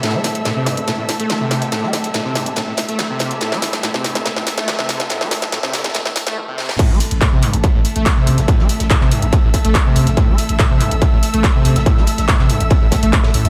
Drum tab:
CC |--------------------------------|--------------------------------|--------------------------------|--------------------------------|
RD |x---x-x-x---x-x-x---x---x---x---|x---x---x---x---x---x---x---x---|x---x-x-x---x-x-x---x---x---x---|x---x---x-x-xxxxx---x-x---------|
HH |x---o-x-x---o-x-x---o-x-x---o-x-|x---o-x-x---o-x-x---o-x-x---o-x-|x---o-x-x---o-x-x---o-x-x---o-x-|x---o-x-x---o-x-x---o-x---------|
CP |--------------------------------|--------------------------------|--------------------------------|--------------------------------|
SD |o---o---o---o---o---o---o---o-o-|o-o-o-o-o-o-o---o---o---o---o-o-|o-o-o-o-o-o-o-o-o-o-o-o-o-o-o-o-|o-o-o-o-o-o-ooooo-o-o-o-----o-o-|
BD |--------------------------------|--------------------------------|--------------------------------|--------------------------------|

CC |x-------------------------------|--------------------------------|--------------------------------|--------------------------------|
RD |x---x-x-x---x-x-x---x---x---x---|x---x---x---x---x---x---x---x---|x---x-x-x---x-x-x---x---x---x---|x---x---x---x---x---x---x-x---x-|
HH |x---o-x-x---o-x-x---o-x-x---o-x-|x---o-x-x---o-x-x---o-x-x---o-x-|x---o-x-x---o-x-x---o-x-x---o-x-|x---o-x-x---o-x-x---o-x-x---o-x-|
CP |--------x---x-----------x-------|--------x-x-------------x-------|--------x---x-----------x-------|--------x-x-------------x-------|
SD |--------o---------------o-----o-|--o---o-o-o-------------o-----o-|--------o---------------o-----o-|--o---o-o-o---------o-----o-----|
BD |o-------o-------o-------o-------|o-------o-------o---o---o-------|o-------o-------o-------o-------|o-------o-------o---o---o-------|